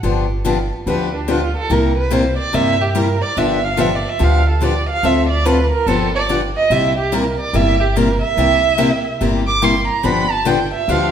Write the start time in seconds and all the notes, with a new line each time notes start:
0.03 G1 D3 F3 B3 D4 G4
0.45 D3 F3 B3 D4 G4
0.86 D2 D3 F3 B3 D4 G4 B4
1.16 D4
1.28 D3 F3 B3 D4 F4 G4
1.57 A4
1.70 C2 C3 G3 A#3 E4 G4 A#4
1.97 B4
2.11 C3 G3 A#3 E4 G4 C5
2.38 D5
2.53 G2 C3 G3 A#3 E4 G4 E5
2.81 G4
2.95 C3 G3 A#3 E4 G4 A#4
3.22 D5
3.37 G1 D3 F3 B3 D4 G4 E5
3.64 F5
3.77 D3 F3 B3 D4 G4 E5
3.95 D5
4.09 E5
4.19 D2 D3 F3 B3 D4 G4
4.24 F5
4.49 A4
4.61 D3 F3 B3 D4 G4 D5
4.90 F5
5.03 D2 D3 A3 C4 F4 A4 E5
5.29 D5
5.46 D3 A3 C4 F4 A4 B4
5.72 A#4
5.86 G1 D3 F3 B3 D4 G4 A4
6.15 D5
6.29 D3 F3 B3 D4 G4
6.57 D#5
6.70 C2 C3 G3 A#3 E4 G4 E5
6.98 G4
7.12 C3 G3 A#3 E4 G4 A#4
7.40 D5
7.53 G1 C3 G3 A#3 E4 G4 E5
7.80 G4
7.96 C3 G3 A#3 E4 G4 A#4
8.22 E5
8.37 C2 C3 G3 A#3 E4 G4
8.78 C3 G3 A#3 E4 G4
9.21 G1 C3 G3 A#3 E4 G4
9.47 D6
9.62 C3 G3 A#3 E4 G4 C6
9.88 A#5
10.03 G1 D3 F3 B3 D4 G4 B5
10.31 A5
10.45 D3 F3 B3 D4 G4 G5
10.74 E5
10.88 D2 D3 F3 B3 D4 G4 F5